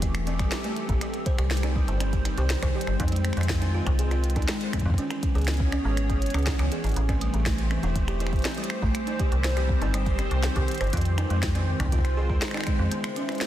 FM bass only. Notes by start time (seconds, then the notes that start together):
Already playing: E1
0.39 G1
0.89 A1
1.38 C2
1.88 G1
2.38 C2
2.63 C2
2.87 G1
3.00 F2
3.37 F2
3.87 C2
4.36 D#2
4.86 F2
5.35 C#2
5.85 G#1
6.34 C#2
6.59 C#2
6.84 G#1
6.96 A1
7.34 A1
7.83 E1
8.33 G1
8.82 A1
9.32 C2
9.82 G1
10.31 C2
10.56 C2
10.81 G1
10.93 F2
11.30 F2
11.80 C2
12.29 D#2
12.79 F2